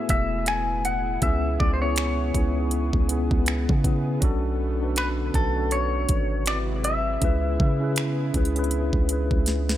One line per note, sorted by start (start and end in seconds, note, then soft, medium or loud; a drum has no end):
0.00 1.19 A2 medium
0.00 1.24 A3 loud
0.00 1.21 B3 loud
0.00 6.43 B3 medium
0.00 1.24 E4 loud
0.00 4.18 E4 medium
0.00 1.23 F#4 medium
0.00 1.24 G#4 loud
0.00 4.18 G#4 medium
0.00 1.24 B4 medium
0.09 1.18 E1 loud
0.09 0.47 E5 medium
0.09 kick medium
0.09 closed hi-hat medium
0.46 0.85 G#5 loud
0.46 finger snap loud
0.46 closed hi-hat medium
0.85 1.22 F#5 loud
0.85 closed hi-hat medium
1.21 1.58 C#2 loud
1.21 6.43 B2 medium
1.21 1.77 B3 medium
1.21 1.77 C#4 medium
1.21 1.78 E4 medium
1.21 1.79 G#4 loud
1.21 1.59 E5 medium
1.21 kick loud
1.21 closed hi-hat medium
1.60 2.32 C#2 loud
1.60 1.73 D5 medium
1.60 kick loud
1.74 1.81 C5 medium
1.80 2.31 B3 medium
1.80 2.32 C#4 medium
1.80 2.32 E4 medium
1.80 2.33 G#4 medium
1.80 3.81 C#5 medium
1.96 finger snap loud
1.96 closed hi-hat medium
2.34 2.92 C#2 loud
2.34 2.55 B3 medium
2.34 2.55 C#4 medium
2.34 2.56 E4 medium
2.34 2.56 G#4 medium
2.34 kick medium
2.34 closed hi-hat medium
2.56 3.06 B3 medium
2.56 3.07 C#4 medium
2.56 2.63 D#4 medium
2.56 3.08 G#4 medium
2.65 3.10 E4 medium
2.71 closed hi-hat medium
2.93 3.30 C#2 loud
2.93 kick medium
3.09 3.80 B3 medium
3.09 3.81 C#4 medium
3.09 3.81 E4 medium
3.09 3.82 G#4 medium
3.09 closed hi-hat medium
3.31 3.67 C#2 loud
3.31 kick medium
3.46 finger snap loud
3.46 closed hi-hat medium
3.69 4.20 C#3 loud
3.69 kick loud
3.84 4.20 B3 medium
3.84 4.19 C#4 medium
3.84 4.21 E4 medium
3.84 4.21 G#4 medium
3.84 kick medium
3.84 closed hi-hat medium
4.21 5.31 B1 loud
4.21 6.45 D3 loud
4.21 6.45 A3 medium
4.21 4.76 C#4 loud
4.21 4.77 D4 loud
4.21 4.78 F#4 loud
4.21 4.78 A4 loud
4.21 kick loud
4.21 closed hi-hat medium
4.80 5.31 C#4 medium
4.80 5.32 D4 medium
4.80 5.32 F#4 medium
4.80 5.33 B4 medium
4.96 5.08 B4 medium
4.96 finger snap loud
4.96 closed hi-hat medium
5.34 6.06 B1 loud
5.34 5.54 C#4 medium
5.34 5.55 D4 medium
5.34 5.56 F#4 medium
5.34 5.74 A4 medium
5.34 5.56 B4 medium
5.34 kick medium
5.34 closed hi-hat medium
5.55 6.46 C#4 medium
5.55 6.47 D4 medium
5.55 6.47 F#4 medium
5.55 6.48 A4 medium
5.71 6.47 C#5 medium
5.71 closed hi-hat medium
6.09 7.18 G#1 loud
6.09 kick medium
6.09 closed hi-hat medium
6.46 7.21 C3 medium
6.46 7.21 F#3 medium
6.46 9.77 G#3 medium
6.46 7.17 C4 medium
6.46 9.77 E4 medium
6.46 7.18 E4 medium
6.46 7.19 F#4 medium
6.46 7.19 B4 medium
6.46 6.58 D5 loud
6.46 finger snap loud
6.46 closed hi-hat medium
6.84 7.93 E5 medium
6.84 closed hi-hat medium
7.21 7.58 C#2 loud
7.21 9.77 C#3 medium
7.21 9.77 B3 medium
7.21 7.76 C#4 medium
7.21 7.77 E4 medium
7.21 7.78 G#4 medium
7.21 7.78 B4 loud
7.21 kick loud
7.21 closed hi-hat medium
7.60 8.32 C#3 loud
7.60 kick medium
7.80 8.31 C#4 medium
7.80 8.32 E4 medium
7.80 8.32 G#4 medium
7.80 8.33 B4 medium
7.96 finger snap loud
7.96 closed hi-hat medium
8.33 8.91 C#2 loud
8.33 8.54 C#4 medium
8.33 8.55 E4 medium
8.33 8.56 G#4 medium
8.33 8.56 B4 medium
8.33 kick medium
8.33 closed hi-hat medium
8.45 closed hi-hat medium
8.55 9.06 C#4 medium
8.55 8.62 D4 medium
8.55 9.07 G#4 medium
8.55 9.08 B4 loud
8.55 closed hi-hat soft
8.63 9.09 E4 medium
8.63 closed hi-hat soft
8.71 closed hi-hat medium
8.93 9.30 C#2 loud
8.93 kick medium
9.09 9.77 C#4 medium
9.09 9.47 E4 medium
9.09 9.48 G#4 medium
9.09 closed hi-hat medium
9.13 9.47 B4 medium
9.31 9.77 C#2 loud
9.31 kick medium
9.46 9.77 B4 medium
9.46 snare medium
9.46 closed hi-hat medium
9.69 snare medium